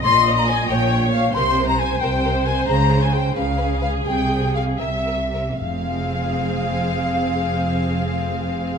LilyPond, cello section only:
\new Staff \with { instrumentName = "Cello section" } { \clef bass \time 6/8 \key f \minor \tempo 4. = 83 bes,4. bes,4. | c4. c4. | des4. des4. | c4. c4. |
f,2.~ | f,2. | }